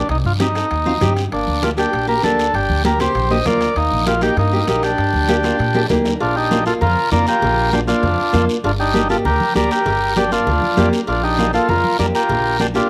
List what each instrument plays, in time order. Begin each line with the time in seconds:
0.09 upright bass C2, transistor combo organ D#4, high conga, high timbale, long guiro
0.25 upright bass G2, transistor combo organ F4, high conga
0.39 nylon-string guitar C4 D#4 G4, transistor combo organ D#4, high conga, high timbale, short guiro
0.55 nylon-string guitar C4 D#4 A4, high timbale, short guiro
0.71 upright bass D#2, high conga, high timbale, long guiro
0.85 nylon-string guitar C4 D#4 F4, high conga
1.00 upright bass G2, nylon-string guitar C4 D#4 G4, high conga, low conga, high timbale, low timbale, short guiro
1.17 high timbale, short guiro
1.32 upright bass G1, accordion A#3, transistor combo organ D4, high conga, high timbale, long guiro
1.47 upright bass D2, high conga
1.62 nylon-string guitar A#3 D4 G4, accordion D4, transistor combo organ F4, high conga, high timbale, short guiro
1.77 nylon-string guitar A#3 D4 G4, accordion D4, transistor combo organ G4, high timbale, short guiro
1.93 upright bass A#1, high conga, high timbale, long guiro
2.07 nylon-string guitar A#3 D4 G4, accordion G4, transistor combo organ A#4
2.23 upright bass D2, nylon-string guitar A#3 D4 G4, accordion D4, transistor combo organ A4, high conga, high timbale, short guiro
2.39 high timbale, short guiro
2.53 upright bass G1, accordion D4, transistor combo organ G4, high conga, high timbale, long guiro
2.69 upright bass D2, high conga
2.84 nylon-string guitar A#3 D4 G4, accordion G4, transistor combo organ A#4, high conga, high timbale, short guiro
2.99 nylon-string guitar A#3 D4 G4, accordion G4, transistor combo organ C5, low conga, high timbale, short guiro
3.15 upright bass A#1, high conga, high timbale, long guiro
3.30 nylon-string guitar A#3 D4 G4, accordion C5, transistor combo organ D#5, high conga
3.45 nylon-string guitar A#3 D4 F4, accordion A#4, transistor combo organ D5, high conga, low conga, high timbale, low timbale, short guiro
3.61 high timbale, short guiro
3.76 upright bass D#2, accordion A#3, transistor combo organ D#4, high conga, high timbale, long guiro
3.91 upright bass A#1, high conga
4.06 nylon-string guitar A#3 D#4 G4, accordion A#3, transistor combo organ F4, high conga, high timbale, short guiro
4.21 nylon-string guitar A#3 D#4 G4, accordion D#4, transistor combo organ G4, high timbale, short guiro
4.37 upright bass G2, accordion A#3, transistor combo organ D#4, high conga, high timbale, long guiro
4.52 nylon-string guitar A#3 D#4 G4
4.67 upright bass A#1, nylon-string guitar A#3 D#4 G4, accordion A#3, transistor combo organ D#4, high conga, high timbale, short guiro
4.83 accordion D4, transistor combo organ G4, high timbale, short guiro
4.98 upright bass G2, high conga, high timbale, long guiro
5.13 upright bass D2, high conga
5.28 nylon-string guitar A#3 D4 G4, high conga, high timbale, short guiro
5.43 nylon-string guitar A#3 D4 F4, high timbale, short guiro
5.59 upright bass A#2, high conga, high timbale, long guiro
5.74 nylon-string guitar A#3 D4 G4, high conga, high timbale
5.89 upright bass D2, nylon-string guitar A#3 D4 G4 D5, high conga, low conga, low timbale, short guiro
6.05 nylon-string guitar A#4, low timbale, short guiro
6.20 upright bass A#1, accordion D4, transistor combo organ D4 F4, cowbell, long guiro
6.36 accordion D4, transistor combo organ D#4 G4
6.51 nylon-string guitar A#3 D4 F4, high conga, short guiro
6.65 nylon-string guitar A#3 D4 F4, accordion F4, transistor combo organ F4 A4, short guiro
6.81 upright bass F2, accordion F4, transistor combo organ F4 A#4, cowbell, low conga, long guiro
7.11 upright bass F2, nylon-string guitar A#3 D4 F4, accordion A#4, transistor combo organ A#4 D5, high conga, low conga, low timbale, short guiro
7.27 accordion F4, transistor combo organ G4 A#4, short guiro
7.42 upright bass A#1, cowbell, low conga, long guiro
7.72 nylon-string guitar A#3 D4 F4, accordion D4, transistor combo organ D4 G4, high conga, short guiro
7.87 nylon-string guitar A#3 D4 F4, accordion D4, transistor combo organ D4 F4, short guiro
8.03 upright bass F2, cowbell, low conga, long guiro
8.33 upright bass F2, nylon-string guitar A#3 D4 F4, high conga, low conga, low timbale, short guiro
8.49 short guiro
8.64 upright bass G1, accordion D4, transistor combo organ D4 F4, cowbell, long guiro
8.79 accordion D4, transistor combo organ D#4 G4
8.93 nylon-string guitar A#3 D4 G4, high conga, short guiro
9.09 nylon-string guitar A#3 D4 G4, accordion F4, transistor combo organ F4 A4, short guiro
9.25 upright bass D2, accordion G4, transistor combo organ G4 A#4, cowbell, low conga, long guiro
9.40 high conga
9.55 upright bass D2, nylon-string guitar A#3 D4 G4, accordion A#4, transistor combo organ A#4 D5, high conga, short guiro
9.70 accordion G4, transistor combo organ G4 A#4, short guiro
9.86 upright bass G1, cowbell, low conga, long guiro
10.16 nylon-string guitar A#3 D4 G4, accordion D4, transistor combo organ D4 G4, high conga, short guiro
10.31 nylon-string guitar A#3 D4 F4, accordion D4, transistor combo organ D4 F4, short guiro
10.47 upright bass D2, cowbell, low conga, long guiro
10.62 high conga
10.77 upright bass F2, nylon-string guitar A#3 D4 G4 D5, high conga, low timbale, short guiro
10.93 nylon-string guitar A#4, short guiro
11.07 upright bass A#1, accordion D4, transistor combo organ D4 F4, cowbell, long guiro
11.23 accordion D4, transistor combo organ D#4 G4
11.38 nylon-string guitar A#3 D4 F4, high conga, short guiro
11.53 nylon-string guitar A#3 D4 F4, accordion F4, transistor combo organ F4 A4, short guiro
11.69 upright bass F2, accordion F4, transistor combo organ F4 A#4, cowbell, low conga, long guiro
11.84 high conga
11.98 upright bass F2, nylon-string guitar A#3 D4 G4, accordion A#4, transistor combo organ A#4 D5, high conga, low timbale, short guiro
12.15 accordion F4, transistor combo organ G4 A#4, short guiro
12.29 upright bass A#1, cowbell, low conga, long guiro
12.59 nylon-string guitar A#3 D4 F4, transistor combo organ D4 G4, accordion D4, high conga, short guiro
12.74 nylon-string guitar A#3 D4 G4, accordion D4, transistor combo organ D4 F4, short guiro